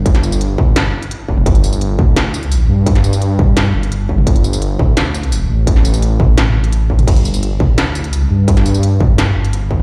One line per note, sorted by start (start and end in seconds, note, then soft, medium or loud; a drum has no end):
0.00 0.92 G1 loud
0.06 kick loud
0.06 closed hi-hat medium
0.15 snare soft
0.15 closed hi-hat soft
0.23 tambourine medium
0.32 tambourine medium
0.41 closed hi-hat medium
0.58 kick loud
0.58 mid tom medium
0.76 snare loud
0.76 closed hi-hat medium
1.02 closed hi-hat soft
1.11 closed hi-hat medium
1.29 1.45 F1 loud
1.29 kick medium
1.38 mid tom medium
1.46 1.97 G1 loud
1.46 kick loud
1.46 closed hi-hat medium
1.55 closed hi-hat soft
1.64 tambourine medium
1.73 tambourine medium
1.81 closed hi-hat medium
1.99 2.68 D2 loud
1.99 kick loud
1.99 mid tom medium
2.16 snare loud
2.16 closed hi-hat medium
2.34 tambourine medium
2.43 closed hi-hat soft
2.52 closed hi-hat medium
2.52 tambourine medium
2.69 3.73 G2 loud
2.86 kick loud
2.86 closed hi-hat medium
2.95 snare soft
2.95 closed hi-hat soft
3.04 tambourine medium
3.13 tambourine medium
3.22 closed hi-hat medium
3.39 kick loud
3.39 mid tom medium
3.57 snare loud
3.57 closed hi-hat medium
3.74 4.08 G1 medium
3.83 closed hi-hat soft
3.92 closed hi-hat medium
4.09 4.25 G1 loud
4.09 kick medium
4.18 mid tom medium
4.27 4.78 G1 loud
4.27 kick loud
4.27 closed hi-hat medium
4.36 closed hi-hat soft
4.44 tambourine medium
4.53 tambourine medium
4.62 closed hi-hat medium
4.79 5.48 D2 loud
4.79 kick loud
4.79 mid tom medium
4.97 snare loud
4.97 closed hi-hat medium
5.14 tambourine medium
5.23 closed hi-hat soft
5.32 closed hi-hat medium
5.32 tambourine medium
5.50 6.18 A1 loud
5.67 kick loud
5.67 closed hi-hat medium
5.76 snare soft
5.85 closed hi-hat soft
5.85 tambourine medium
5.94 tambourine medium
6.02 closed hi-hat medium
6.20 7.06 A1 loud
6.20 kick loud
6.20 mid tom medium
6.38 snare loud
6.38 closed hi-hat medium
6.46 mid tom soft
6.55 mid tom soft
6.64 closed hi-hat soft
6.72 closed hi-hat medium
6.90 kick medium
6.99 closed hi-hat soft
6.99 mid tom medium
7.07 7.59 G1 loud
7.07 kick loud
7.07 closed hi-hat medium
7.07 crash medium
7.16 closed hi-hat soft
7.25 tambourine medium
7.34 tambourine medium
7.43 closed hi-hat medium
7.60 8.09 D2 loud
7.60 kick loud
7.60 mid tom medium
7.78 snare loud
7.78 closed hi-hat medium
7.95 tambourine medium
8.04 closed hi-hat soft
8.09 8.29 C#2 loud
8.09 closed hi-hat medium
8.09 tambourine medium
8.30 9.34 G2 loud
8.48 kick loud
8.48 closed hi-hat medium
8.57 snare soft
8.57 closed hi-hat soft
8.66 tambourine medium
8.74 tambourine medium
8.83 closed hi-hat medium
9.00 kick loud
9.00 mid tom medium
9.18 snare loud
9.18 closed hi-hat medium
9.36 9.69 G1 loud
9.45 closed hi-hat soft
9.53 closed hi-hat medium
9.71 9.83 G1 medium
9.71 kick medium
9.80 mid tom medium